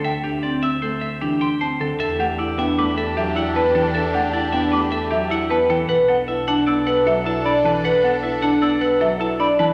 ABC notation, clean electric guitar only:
X:1
M:5/4
L:1/8
Q:1/4=154
K:Em
V:1 name="Clean electric guitar"
e G d e c e G g c A | e G d e B e G f B A | e G d e B e G f B A | f A e f d f A a d B |
f A e f d f A a d B |]